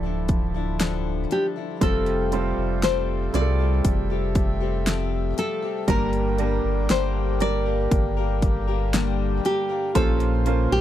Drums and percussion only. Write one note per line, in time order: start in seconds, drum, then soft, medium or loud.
0.29 kick medium
0.29 closed hi-hat medium
0.80 snare loud
0.80 closed hi-hat medium
1.31 closed hi-hat medium
1.81 kick medium
1.81 closed hi-hat medium
2.06 closed hi-hat soft
2.32 closed hi-hat medium
2.82 snare loud
2.82 closed hi-hat medium
3.34 closed hi-hat medium
3.85 kick medium
3.85 closed hi-hat medium
4.35 kick medium
4.35 closed hi-hat medium
4.86 snare loud
4.86 closed hi-hat medium
5.38 closed hi-hat medium
5.88 kick medium
5.88 closed hi-hat medium
6.13 closed hi-hat soft
6.38 closed hi-hat medium
6.89 snare medium
6.89 closed hi-hat medium
7.40 closed hi-hat medium
7.91 kick loud
7.91 closed hi-hat medium
8.42 kick medium
8.42 closed hi-hat medium
8.93 snare loud
8.93 closed hi-hat medium
9.45 closed hi-hat medium
9.95 kick medium
9.95 closed hi-hat medium
10.20 closed hi-hat soft
10.46 closed hi-hat medium